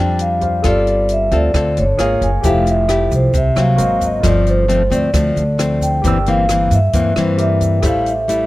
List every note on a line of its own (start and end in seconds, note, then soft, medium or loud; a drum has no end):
0.00 0.61 F2 medium
0.00 0.63 F3 medium
0.00 0.62 G3 soft
0.00 0.62 C4 medium
0.00 0.62 D4 medium
0.00 0.38 G4 soft
0.00 0.39 C5 soft
0.00 0.40 D5 soft
0.00 0.41 F5 soft
0.00 0.17 G5 loud
0.19 0.62 F5 medium
0.19 closed hi-hat soft
0.40 0.64 G4 soft
0.40 0.62 C5 soft
0.40 0.65 D5 soft
0.40 0.65 F5 soft
0.40 kick soft
0.40 closed hi-hat soft
0.62 1.28 G1 medium
0.62 1.52 G3 medium
0.62 1.29 C4 soft
0.62 1.29 F4 medium
0.62 1.96 A4 soft
0.62 1.29 A4 medium
0.62 1.96 C5 soft
0.62 kick medium
0.62 cross-stick soft
0.62 closed hi-hat soft
0.66 1.98 D5 soft
0.66 0.89 D5 medium
0.66 1.98 F5 soft
0.87 1.10 D5 medium
0.87 closed hi-hat soft
1.09 1.34 E5 medium
1.09 closed hi-hat soft
1.31 1.53 D2 medium
1.31 1.51 C4 medium
1.31 1.51 F4 medium
1.31 1.52 A4 medium
1.31 1.80 D5 medium
1.31 kick soft
1.31 closed hi-hat soft
1.54 1.79 D2 medium
1.54 1.97 D3 medium
1.54 1.83 C4 soft
1.54 1.84 F4 soft
1.54 1.84 A4 medium
1.54 kick medium
1.54 cross-stick medium
1.54 closed hi-hat soft
1.77 1.98 G1 medium
1.77 2.24 C#5 medium
1.77 closed hi-hat soft
1.97 2.20 G#1 medium
1.97 2.30 A#3 soft
1.97 2.30 F4 medium
1.97 2.43 G#4 soft
1.97 2.30 G#4 medium
1.97 2.44 A#4 soft
1.97 2.44 C#5 soft
1.97 2.45 F5 medium
1.97 cross-stick medium
1.97 closed hi-hat soft
2.21 2.42 F#1 medium
2.21 2.46 G#5 medium
2.21 kick soft
2.21 closed hi-hat soft
2.41 3.07 F1 medium
2.41 3.32 F3 medium
2.41 2.86 A3 medium
2.41 3.75 G4 soft
2.41 3.76 A4 soft
2.41 3.76 C5 soft
2.41 kick medium
2.41 closed hi-hat soft
2.41 shaker medium
2.45 2.86 E4 soft
2.45 2.86 G4 medium
2.45 3.78 E5 soft
2.45 2.69 F5 medium
2.67 3.10 E5 medium
2.67 closed hi-hat soft
2.67 shaker soft
2.89 3.34 A3 medium
2.89 3.34 E4 medium
2.89 3.34 G4 medium
2.89 cross-stick medium
2.89 closed hi-hat soft
3.11 3.32 C2 medium
3.11 kick soft
3.11 closed hi-hat soft
3.11 shaker medium
3.15 3.37 C5 medium
3.34 3.55 C2 medium
3.34 3.77 C3 medium
3.34 3.59 E5 medium
3.34 kick medium
3.34 closed hi-hat soft
3.34 shaker medium
3.56 3.77 C2 medium
3.56 4.20 F#3 medium
3.56 4.20 A#3 medium
3.56 4.21 C4 medium
3.56 3.79 F5 medium
3.56 cross-stick medium
3.56 closed hi-hat soft
3.56 shaker soft
3.76 4.20 G#1 medium
3.76 4.22 F#4 medium
3.76 4.23 A#4 soft
3.76 4.23 C5 soft
3.76 4.24 D#5 medium
3.76 closed hi-hat soft
3.76 shaker medium
3.82 4.03 F5 medium
4.01 4.26 D#5 medium
4.01 kick soft
4.01 closed hi-hat soft
4.01 shaker medium
4.21 4.87 G1 medium
4.21 5.11 G2 medium
4.21 4.65 F3 medium
4.21 4.65 A3 medium
4.21 5.98 F4 soft
4.21 5.99 A4 soft
4.21 kick medium
4.21 cross-stick soft
4.21 closed hi-hat soft
4.25 4.66 C4 medium
4.25 6.00 C5 soft
4.25 4.48 D5 medium
4.25 6.01 D5 soft
4.25 shaker medium
4.46 4.94 C5 medium
4.46 closed hi-hat soft
4.46 shaker soft
4.68 4.82 F3 medium
4.68 4.82 A3 medium
4.68 4.82 C4 medium
4.68 closed hi-hat soft
4.90 5.12 D2 medium
4.90 5.10 F3 medium
4.90 5.10 A3 medium
4.90 5.10 C4 medium
4.90 5.84 D5 medium
4.90 kick soft
4.90 closed hi-hat soft
4.90 shaker medium
5.13 5.34 D2 loud
5.13 6.01 D3 medium
5.13 5.42 F3 medium
5.13 5.43 A3 medium
5.13 5.43 C4 medium
5.13 kick medium
5.13 cross-stick medium
5.13 closed hi-hat soft
5.13 shaker medium
5.36 5.99 D2 medium
5.36 closed hi-hat soft
5.36 shaker soft
5.58 6.01 F3 medium
5.58 6.02 A3 medium
5.58 6.02 C4 medium
5.58 cross-stick medium
5.58 closed hi-hat soft
5.58 shaker soft
5.81 6.28 G5 medium
5.81 kick soft
5.81 closed hi-hat soft
5.81 shaker medium
6.02 6.67 G1 medium
6.02 6.92 G2 medium
6.02 6.17 E3 medium
6.02 6.17 A#3 medium
6.02 6.18 C4 medium
6.02 7.34 G4 soft
6.02 7.36 A#4 soft
6.02 7.36 D5 soft
6.02 kick medium
6.02 closed hi-hat soft
6.02 shaker medium
6.08 7.37 E6 soft
6.26 6.46 E3 medium
6.26 6.46 A#3 medium
6.26 6.46 C4 medium
6.26 6.73 F5 medium
6.26 closed hi-hat soft
6.26 shaker soft
6.49 6.78 E3 soft
6.49 6.78 A#3 soft
6.49 6.79 C4 medium
6.49 cross-stick medium
6.49 closed hi-hat soft
6.49 shaker medium
6.71 6.92 G2 medium
6.71 7.18 E5 medium
6.71 kick soft
6.71 closed hi-hat soft
6.71 shaker medium
6.93 7.14 G2 medium
6.93 7.81 G2 medium
6.93 7.13 E3 medium
6.93 7.12 A#3 medium
6.93 7.13 C4 medium
6.93 kick medium
6.93 closed hi-hat soft
6.93 shaker medium
7.16 7.79 G2 medium
7.16 7.80 E3 medium
7.16 7.81 A#3 medium
7.16 7.81 C4 medium
7.16 7.41 C5 medium
7.16 cross-stick medium
7.16 closed hi-hat soft
7.16 shaker soft
7.37 7.79 G4 soft
7.37 7.83 A#4 soft
7.37 7.83 D5 soft
7.37 7.84 E5 soft
7.37 closed hi-hat soft
7.42 7.82 E5 medium
7.61 kick soft
7.61 closed hi-hat soft
7.61 shaker medium
7.80 8.46 A1 medium
7.80 8.12 G3 soft
7.80 8.46 G4 soft
7.80 8.46 A4 soft
7.80 8.46 C5 soft
7.80 kick soft
7.80 cross-stick soft
7.80 closed hi-hat soft
7.84 8.46 A2 medium
7.84 8.13 A3 medium
7.84 8.13 E4 medium
7.84 8.46 E5 soft
7.84 8.08 F5 medium
7.84 shaker medium
8.06 8.46 E5 medium
8.06 closed hi-hat soft
8.06 shaker soft
8.28 8.46 G3 soft
8.28 8.46 A3 medium
8.28 8.46 E4 medium
8.28 closed hi-hat soft
8.28 shaker medium